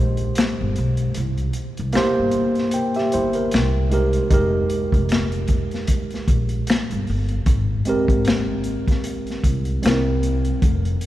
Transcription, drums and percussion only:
0.17 closed hi-hat soft
0.35 finger snap medium
0.35 snare loud
0.35 closed hi-hat medium
0.76 closed hi-hat medium
0.97 closed hi-hat soft
1.14 closed hi-hat medium
1.38 closed hi-hat soft
1.53 closed hi-hat medium
1.77 closed hi-hat soft
1.93 finger snap medium
1.93 snare loud
1.93 closed hi-hat medium
2.31 closed hi-hat soft
2.55 snare soft
2.55 closed hi-hat soft
2.71 closed hi-hat medium
2.94 snare soft
2.94 closed hi-hat soft
3.12 closed hi-hat medium
3.33 closed hi-hat soft
3.51 finger snap medium
3.51 snare loud
3.51 closed hi-hat medium
3.91 closed hi-hat medium
4.13 closed hi-hat soft
4.31 kick loud
4.31 closed hi-hat medium
4.70 closed hi-hat medium
4.92 kick medium
4.92 closed hi-hat soft
5.09 finger snap medium
5.09 snare medium
5.09 closed hi-hat medium
5.32 closed hi-hat soft
5.48 kick medium
5.48 closed hi-hat soft
5.71 snare soft
5.71 closed hi-hat soft
5.87 kick medium
5.87 closed hi-hat medium
6.10 snare soft
6.10 closed hi-hat soft
6.28 kick medium
6.28 closed hi-hat medium
6.49 closed hi-hat soft
6.67 finger snap medium
6.67 snare loud
6.67 closed hi-hat medium
6.91 closed hi-hat soft
7.07 open hi-hat soft
7.29 closed hi-hat soft
7.46 kick loud
7.46 closed hi-hat medium
7.85 closed hi-hat medium
8.08 kick medium
8.08 closed hi-hat soft
8.25 finger snap medium
8.25 snare loud
8.25 closed hi-hat medium
8.64 closed hi-hat soft
8.88 kick medium
8.88 snare soft
8.88 closed hi-hat soft
9.04 closed hi-hat medium
9.27 snare soft
9.27 closed hi-hat soft
9.44 kick medium
9.44 closed hi-hat medium
9.65 closed hi-hat soft
9.83 finger snap medium
9.83 snare loud
9.83 closed hi-hat medium
10.23 closed hi-hat soft
10.45 closed hi-hat soft
10.62 kick loud
10.62 closed hi-hat medium
10.85 closed hi-hat soft
11.01 closed hi-hat medium

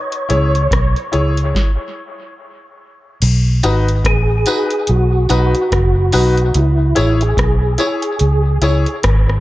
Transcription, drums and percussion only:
0.12 closed hi-hat medium
0.30 closed hi-hat medium
0.55 closed hi-hat soft
0.71 kick loud
0.71 cross-stick loud
0.71 closed hi-hat medium
0.96 closed hi-hat soft
1.13 closed hi-hat medium
1.37 closed hi-hat medium
1.55 kick medium
1.55 snare medium
3.22 closed hi-hat loud
3.22 crash loud
3.63 closed hi-hat medium
3.63 tambourine soft
3.88 closed hi-hat medium
4.04 kick loud
4.04 cross-stick loud
4.04 closed hi-hat medium
4.46 closed hi-hat medium
4.46 tambourine medium
4.71 closed hi-hat medium
4.87 closed hi-hat medium
5.29 closed hi-hat medium
5.29 tambourine medium
5.55 closed hi-hat soft
5.72 kick loud
5.72 cross-stick loud
5.72 closed hi-hat medium
6.12 open hi-hat medium
6.12 tambourine medium
6.37 closed hi-hat medium
6.54 closed hi-hat loud
6.96 closed hi-hat medium
6.96 tambourine soft
7.21 closed hi-hat medium
7.37 kick loud
7.37 cross-stick loud
7.37 closed hi-hat medium
7.78 closed hi-hat medium
7.78 tambourine medium
8.02 closed hi-hat medium
8.19 closed hi-hat medium
8.62 closed hi-hat medium
8.62 tambourine medium
8.86 closed hi-hat soft
9.03 kick loud
9.03 cross-stick loud
9.03 closed hi-hat medium
9.29 cross-stick medium

